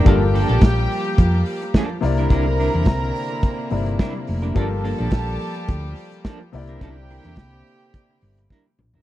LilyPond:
<<
  \new Staff \with { instrumentName = "Violin section" } { \time 4/4 \key g \dorian \tempo 4 = 106 <g' g''>2. r8 <bes' bes''>8~ | <bes' bes''>2.~ <bes' bes''>8 r8 | <a' a''>2. r8 <g' g''>8~ | <g' g''>2.~ <g' g''>8 r8 | }
  \new Staff \with { instrumentName = "Grand piano" } { \time 4/4 \key g \dorian <g f' a' bes'>2.~ <g f' a' bes'>8 <c bes e' d''>8~ | <c bes e' d''>2~ <c bes e' d''>8 <c bes e' d''>4. | <g f' a' bes'>2.~ <g f' a' bes'>8 <c bes e' d''>8~ | <c bes e' d''>2.~ <c bes e' d''>8 r8 | }
  \new Staff \with { instrumentName = "Clean electric guitar" } { \time 4/4 \key g \dorian <f bes d' a'>16 r16 <f bes d' a'>16 <f bes d' a'>16 r2 <f bes d' a'>16 r8 <g d' e' bes'>16 | <g d' e' bes'>16 r16 <g d' e' bes'>16 <g d' e' bes'>16 r2 <g d' e' bes'>16 r8 <g d' e' bes'>16 | <f bes d' a'>16 r16 <f bes d' a'>16 <f bes d' a'>16 r2 <f bes d' a'>16 r8 <g d' e' bes'>16 | <g d' e' bes'>16 r16 <g d' e' bes'>16 <g d' e' bes'>16 r2 <g d' e' bes'>16 r8 <g d' e' bes'>16 | }
  \new Staff \with { instrumentName = "String section" } { \time 4/4 \key g \dorian <f g bes g'>2.~ <f g bes g'>8 <d bes c' e'>8~ | <d bes c' e'>1 | <f g g'>2.~ <f g g'>8 <d bes c' e'>8~ | <d bes c' e'>1 | }
  \new Staff \with { instrumentName = "Fingered electric bass" } { \clef bass \time 4/4 \key g \dorian g,,8. bes,,16 bes,,8 r8 f,8 r4 c,8 | c,8. e,16 c,8 r4 g,,8 r8 f,,8 | g,,8. bes,,16 bes,,8 r8 d,8 r4 c,8 | c,8. e,16 c,8 r4 g,,8 r8 bes,,8 | }
  \new DrumStaff \with { instrumentName = "Drums" } \drummode { \time 4/4 <hh bd>8 hho16 hh16 <hh bd sn>8 hho16 hh16 <hh bd>8 hho16 hh16 <hh bd sn>8 <hho sn>16 hh16 | <hh bd>8 hho16 hh16 <hh bd sn>8 hho16 hh16 <hh bd>8 hho16 hh16 <hh bd sn>8 hho16 hh16 | <hh bd>8 hho16 hh16 <hh bd sn>8 hho16 hh16 <hh bd>8 hho16 hh16 <hh bd sn>8 hho16 hh16 | <hh bd>8 hho16 hh16 <hh bd sn>8 hho16 hh16 <hh bd>8 hho16 hh16 <bd sn>8 toml16 tomfh16 | }
>>